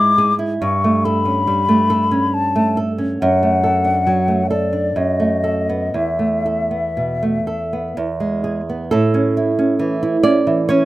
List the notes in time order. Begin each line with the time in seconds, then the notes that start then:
Already playing: G#2 G#3 E4 D6
0.18 G#4
0.39 E4
0.62 G2 C#6
0.84 A3
1.05 A4 B5
1.25 C#4
1.47 G3
1.69 A3
1.90 A4
2.11 C#4
2.34 A5
2.56 A3
2.77 A4
2.98 C#4
3.21 F#2 F#5
3.43 A3
3.64 A4
3.85 D4
4.07 F#3
4.28 A3
4.50 A4 D5
4.73 D4
4.96 F#2 D#5
5.20 A3
5.44 A4
5.69 B3
5.94 E2 E5
6.19 A3
6.46 A4
6.71 B3
6.97 B2
7.23 A3
7.47 A4
7.73 B3
7.97 E2
8.20 G#3
8.44 G#4
8.70 B3
8.91 A2 A4
9.14 C#4
9.37 E4
9.59 C#4
9.79 E3
10.03 E4
10.23 C#4 D5
10.47 E3
10.69 C#4 C#5